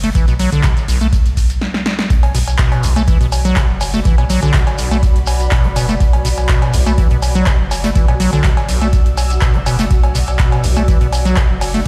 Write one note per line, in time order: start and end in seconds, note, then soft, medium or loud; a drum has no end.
0.00 0.11 F#1 medium
0.00 0.10 A3 medium
0.00 snare medium
0.00 closed hi-hat medium
0.00 shekere soft
0.15 0.48 B1 loud
0.15 0.26 E3 medium
0.15 kick loud
0.15 closed hi-hat medium
0.15 shekere soft
0.28 0.34 B2 medium
0.28 closed hi-hat soft
0.28 shekere soft
0.39 0.50 F#3 loud
0.39 closed hi-hat medium
0.39 open hi-hat loud
0.39 shekere medium
0.52 0.62 B1 medium
0.52 0.65 D3 loud
0.52 closed hi-hat medium
0.52 shekere soft
0.63 0.75 B2 medium
0.63 kick loud
0.63 snare loud
0.63 clap loud
0.63 closed hi-hat medium
0.63 shekere soft
0.77 snare soft
0.77 closed hi-hat soft
0.77 shekere soft
0.88 1.21 B1 loud
0.88 0.99 B1 medium
0.88 closed hi-hat medium
0.88 open hi-hat loud
0.88 shekere medium
1.01 1.08 A3 medium
1.01 closed hi-hat medium
1.01 shekere soft
1.13 kick loud
1.13 closed hi-hat medium
1.13 shekere medium
1.25 1.58 B1 medium
1.25 closed hi-hat soft
1.25 shekere soft
1.37 kick medium
1.37 closed hi-hat medium
1.37 open hi-hat loud
1.37 shekere medium
1.50 closed hi-hat medium
1.50 shekere soft
1.61 snare medium
1.74 snare medium
1.86 snare medium
1.99 snare medium
2.10 2.43 B1 loud
2.10 11.88 F#4 medium
2.10 kick loud
2.10 closed hi-hat medium
2.10 shekere soft
2.23 closed hi-hat soft
2.23 cowbell medium
2.35 2.39 B2 medium
2.35 closed hi-hat medium
2.35 open hi-hat loud
2.35 shekere loud
2.47 2.57 B1 medium
2.47 closed hi-hat medium
2.47 cowbell soft
2.47 shekere medium
2.58 2.85 B2 medium
2.58 kick loud
2.58 snare loud
2.58 clap loud
2.58 closed hi-hat medium
2.58 shekere soft
2.72 11.88 D5 medium
2.72 snare soft
2.72 closed hi-hat soft
2.72 cowbell medium
2.83 2.94 B1 medium
2.83 3.16 B1 loud
2.83 closed hi-hat medium
2.83 open hi-hat loud
2.83 shekere medium
2.96 3.03 A3 medium
2.96 closed hi-hat medium
2.96 cowbell soft
2.96 shekere medium
3.08 3.18 E3 medium
3.08 kick loud
3.08 closed hi-hat medium
3.08 shekere soft
3.21 3.53 B1 medium
3.21 3.27 B2 medium
3.21 closed hi-hat soft
3.32 7.28 B5 medium
3.32 closed hi-hat medium
3.32 open hi-hat loud
3.32 cowbell medium
3.32 shekere loud
3.45 3.58 F#3 loud
3.45 closed hi-hat medium
3.45 shekere medium
3.56 3.67 B2 medium
3.56 kick loud
3.56 snare loud
3.56 clap loud
3.56 closed hi-hat medium
3.56 cowbell soft
3.56 shekere soft
3.69 4.02 F#1 loud
3.81 open hi-hat loud
3.81 open hi-hat medium
3.81 cowbell medium
3.81 shekere loud
3.93 4.00 A3 medium
3.93 snare soft
3.93 closed hi-hat medium
3.93 shekere medium
4.05 4.38 B1 loud
4.05 4.16 E3 medium
4.05 kick loud
4.05 closed hi-hat medium
4.05 shekere soft
4.18 4.25 B2 medium
4.18 closed hi-hat soft
4.18 cowbell medium
4.30 4.40 F#3 loud
4.30 closed hi-hat medium
4.30 open hi-hat loud
4.30 shekere medium
4.42 4.52 B1 medium
4.42 4.56 D3 loud
4.42 closed hi-hat medium
4.42 cowbell soft
4.42 shekere medium
4.54 4.65 B2 medium
4.54 kick loud
4.54 snare loud
4.54 clap loud
4.54 closed hi-hat medium
4.54 closed hi-hat loud
4.54 shekere soft
4.67 snare soft
4.67 closed hi-hat soft
4.67 cowbell medium
4.78 4.89 B1 medium
4.78 5.12 B1 loud
4.78 closed hi-hat medium
4.78 open hi-hat loud
4.78 shekere medium
4.91 4.98 A3 medium
4.91 closed hi-hat medium
4.91 cowbell soft
4.91 shekere medium
5.03 kick loud
5.03 closed hi-hat medium
5.03 shekere soft
5.16 5.48 B1 medium
5.16 closed hi-hat soft
5.26 closed hi-hat medium
5.26 open hi-hat loud
5.26 cowbell medium
5.26 shekere medium
5.40 closed hi-hat medium
5.40 shekere medium
5.51 5.66 B2 medium
5.51 kick loud
5.51 snare loud
5.51 clap loud
5.51 closed hi-hat medium
5.51 cowbell soft
5.51 shekere soft
5.64 5.97 F#1 loud
5.64 5.68 B3 medium
5.64 closed hi-hat soft
5.76 5.87 B2 medium
5.76 closed hi-hat medium
5.76 open hi-hat loud
5.76 cowbell medium
5.76 shekere medium
5.89 5.95 A3 medium
5.89 snare soft
5.89 closed hi-hat medium
5.89 shekere medium
6.00 6.34 B1 loud
6.00 kick loud
6.00 closed hi-hat medium
6.00 shekere soft
6.13 closed hi-hat soft
6.13 cowbell medium
6.25 6.29 B2 medium
6.25 closed hi-hat medium
6.25 open hi-hat loud
6.25 shekere loud
6.38 6.47 B1 medium
6.38 closed hi-hat soft
6.38 cowbell soft
6.38 shekere medium
6.49 6.75 B2 medium
6.49 kick loud
6.49 snare loud
6.49 clap loud
6.49 closed hi-hat medium
6.49 closed hi-hat loud
6.49 shekere soft
6.62 snare soft
6.62 closed hi-hat soft
6.62 cowbell medium
6.73 6.84 B1 medium
6.73 7.07 B1 loud
6.73 closed hi-hat medium
6.73 open hi-hat loud
6.73 shekere medium
6.86 6.93 A3 medium
6.86 closed hi-hat soft
6.86 cowbell soft
6.86 shekere medium
6.98 7.09 E3 medium
6.98 kick loud
6.98 closed hi-hat medium
6.98 shekere soft
7.10 7.43 B1 medium
7.10 7.17 B2 medium
7.10 closed hi-hat soft
7.22 11.18 E6 medium
7.22 closed hi-hat medium
7.22 open hi-hat loud
7.22 cowbell medium
7.22 shekere loud
7.35 7.48 F#3 loud
7.35 closed hi-hat medium
7.35 shekere medium
7.46 7.57 B2 medium
7.46 kick loud
7.46 snare loud
7.46 clap loud
7.46 closed hi-hat medium
7.46 cowbell soft
7.46 shekere soft
7.60 7.92 F#1 loud
7.71 snare loud
7.71 closed hi-hat medium
7.71 open hi-hat loud
7.71 cowbell medium
7.71 shekere loud
7.84 7.90 A3 medium
7.84 snare loud
7.84 closed hi-hat medium
7.84 shekere medium
7.95 8.29 B1 loud
7.95 8.06 E3 medium
7.95 kick loud
7.95 closed hi-hat medium
7.95 shekere soft
8.08 8.15 B2 medium
8.08 closed hi-hat soft
8.08 cowbell medium
8.20 8.31 F#3 loud
8.20 closed hi-hat medium
8.20 open hi-hat loud
8.20 shekere loud
8.33 8.42 B1 medium
8.33 8.46 D3 loud
8.33 closed hi-hat medium
8.33 cowbell soft
8.33 shekere medium
8.44 8.55 B2 medium
8.44 kick loud
8.44 snare loud
8.44 clap loud
8.44 closed hi-hat medium
8.44 closed hi-hat loud
8.44 shekere soft
8.57 snare soft
8.57 closed hi-hat soft
8.57 cowbell medium
8.69 8.79 B1 medium
8.69 9.02 B1 loud
8.69 closed hi-hat medium
8.69 open hi-hat loud
8.69 shekere medium
8.81 8.88 A3 medium
8.81 closed hi-hat medium
8.81 cowbell soft
8.81 shekere medium
8.93 kick loud
8.93 closed hi-hat medium
8.93 shekere soft
9.06 9.38 B1 medium
9.06 closed hi-hat soft
9.17 closed hi-hat medium
9.17 open hi-hat loud
9.17 cowbell medium
9.17 shekere loud
9.30 closed hi-hat medium
9.30 shekere medium
9.41 9.56 B2 medium
9.41 kick loud
9.41 snare loud
9.41 clap loud
9.41 closed hi-hat medium
9.41 cowbell soft
9.41 shekere soft
9.54 9.87 F#1 medium
9.54 9.59 B3 medium
9.54 closed hi-hat soft
9.66 9.77 B2 medium
9.66 closed hi-hat medium
9.66 open hi-hat loud
9.66 cowbell medium
9.66 shekere loud
9.79 9.86 A3 medium
9.79 snare loud
9.79 closed hi-hat medium
9.79 shekere medium
9.91 10.24 B1 loud
9.91 kick loud
9.91 closed hi-hat medium
9.91 shekere soft
10.03 closed hi-hat soft
10.03 cowbell medium
10.15 10.19 B2 medium
10.15 closed hi-hat medium
10.15 open hi-hat loud
10.15 shekere loud
10.27 10.37 B1 medium
10.27 closed hi-hat medium
10.27 cowbell soft
10.27 shekere medium
10.39 10.65 B2 medium
10.39 kick loud
10.39 snare loud
10.39 clap loud
10.39 closed hi-hat medium
10.39 shekere soft
10.52 snare soft
10.52 closed hi-hat soft
10.52 cowbell medium
10.64 10.74 B1 medium
10.64 10.97 B1 loud
10.64 closed hi-hat medium
10.64 open hi-hat loud
10.64 shekere medium
10.76 10.83 A3 medium
10.76 closed hi-hat medium
10.76 cowbell soft
10.76 shekere medium
10.88 10.99 E3 medium
10.88 kick loud
10.88 closed hi-hat medium
10.88 shekere soft
11.01 11.33 B1 medium
11.01 11.07 B2 medium
11.01 closed hi-hat soft
11.13 11.88 B5 medium
11.13 closed hi-hat medium
11.13 open hi-hat loud
11.13 cowbell medium
11.13 shekere medium
11.25 11.39 F#3 loud
11.25 closed hi-hat medium
11.25 shekere medium
11.36 11.48 B2 medium
11.36 kick loud
11.36 snare loud
11.36 clap loud
11.36 closed hi-hat medium
11.36 cowbell soft
11.36 shekere soft
11.50 11.82 F#1 loud
11.61 open hi-hat loud
11.61 open hi-hat medium
11.61 cowbell medium
11.61 shekere loud
11.74 11.81 A3 medium
11.74 snare soft
11.74 closed hi-hat medium
11.74 shekere soft